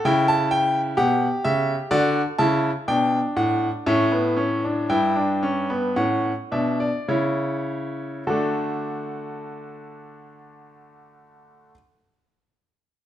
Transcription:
<<
  \new Staff \with { instrumentName = "Grand piano" } { \time 4/4 \key d \major \tempo 4 = 55 << { g''16 a''16 g''8 fis''8 e''8 d''8 a''8 g''8 fis''8 | e''4 g''4 fis''8 e''16 d''16 cis''4 | <a d' a'>1 | } \\ { e'4 g'4 fis'8 e'8 d'4 | cis'16 b16 cis'16 d'16 e'16 d'16 cis'16 b16 cis'8 d'8 e'4 | fis'1 | } >> }
  \new Staff \with { instrumentName = "Grand piano" } { \clef bass \time 4/4 \key d \major cis4 b,8 cis8 d8 cis8 b,8 a,8 | a,4 g,4 a,8 b,8 cis4 | d1 | }
>>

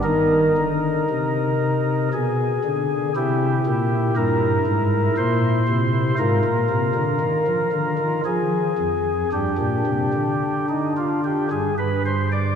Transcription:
<<
  \new Staff \with { instrumentName = "Pipe organ" } { \time 3/4 \key c \minor \tempo 4 = 58 << { bes'2 gis'4 | g'4 bes'4 c''4 | bes'2 aes'4 | g'4~ g'16 ees'16 f'16 g'16 aes'16 b'16 c''16 d''16 | } \\ { ees'2 r4 | e'2. | f'2 r4 | d'2 r4 | } >> }
  \new Staff \with { instrumentName = "Pipe organ" } { \clef bass \time 3/4 \key c \minor ees8 d8 c4 b,8 d8 | c8 bes,8 g,8 aes,8 bes,8 c8 | aes,16 bes,16 c16 d16 ees16 f16 d16 ees16 f8 f,8 | g,16 bes,16 c16 d4~ d16 g,4 | }
>>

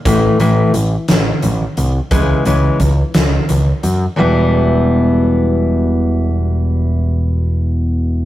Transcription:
<<
  \new Staff \with { instrumentName = "Steel-string acoustic guitar" } { \clef bass \time 6/8 \key e \dorian \tempo 4. = 58 <a, e a>8 <a, e a>8 <a, e>8 r8 <a, e>8 <a, e>8 | <cis e gis>8 <cis e gis>8 <cis e>8 r8 <cis e>8 <cis e>8 | <e, b, e g b e'>2.~ | <e, b, e g b e'>2. | }
  \new Staff \with { instrumentName = "Picked electric bass" } { \clef bass \time 6/8 \key e \dorian a,,8 a,,8 a,,8 a,,8 a,,8 c,8 | cis,8 cis,8 cis,8 cis,8 cis,8 fis,8 | e,,2.~ | e,,2. | }
  \new DrumStaff \with { instrumentName = "Drums" } \drummode { \time 6/8 <hh bd>8 hh8 hh8 <hh sn>8 hh8 hh8 | <hh bd>8 hh8 <hh bd>8 <hh sn>8 hh8 hh8 | r4. r4. | r4. r4. | }
>>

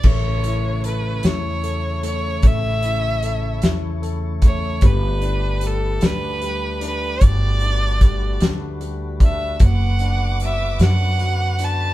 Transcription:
<<
  \new Staff \with { instrumentName = "Violin section" } { \time 6/8 \key a \mixolydian \tempo 4. = 50 r2. | r2. | r2. | r2. |
d'''2~ d'''8 b''8 | }
  \new Staff \with { instrumentName = "Violin" } { \time 6/8 \key a \mixolydian cis''4 b'8 cis''4 cis''8 | e''4. r4 cis''8 | b'4 a'8 b'4 b'8 | d''4. r4 e''8 |
fis''4 e''8 fis''4 a''8 | }
  \new Staff \with { instrumentName = "Tonewheel organ" } { \time 6/8 \key a \mixolydian << { <cis cis''>2.~ | <cis cis''>2. | <d b'>2.~ | <d b'>2. |
<d b'>2. | } \\ { e'2.~ | e'2. | g'2. | fis'2.~ |
fis'2. | } >> }
  \new Staff \with { instrumentName = "Tonewheel organ" } { \time 6/8 \key a \mixolydian a2.~ | a2.~ | a2.~ | a2. |
b2. | }
  \new Staff \with { instrumentName = "Upright piano" } { \time 6/8 \key a \mixolydian a8 e'8 a'8 e'8 a'8 a8 | a8 e'8 a'8 e'8 a'8 a8 | g8 d'8 g8 d'8 g8 d'8 | g8 d'8 g8 d'8 g8 d'8 |
fis8 d'8 fis8 d'8 fis8 d'8 | }
  \new Staff \with { instrumentName = "Upright bass" } { \clef bass \time 6/8 \key a \mixolydian a,,4. e,4. | a,,4. e,4. | g,,4. d,4. | g,,4. d,4. |
fis,,4. fis,4. | }
  \new DrumStaff \with { instrumentName = "Drums" } \drummode { \time 6/8 <cymc bd>8 hh8 hh8 <hh sn>8 hh8 hh8 | <hh bd>8 hh8 hh8 <hh sn>8 hh8 <hh bd>8 | <hh bd>8 hh8 hh8 <hh sn>8 hh8 hh8 | <hh bd>8 hh8 <hh bd>8 <hh sn>8 hh8 <hh bd>8 |
<hh bd>8 hh8 hh8 <hh sn>8 hh8 hh8 | }
>>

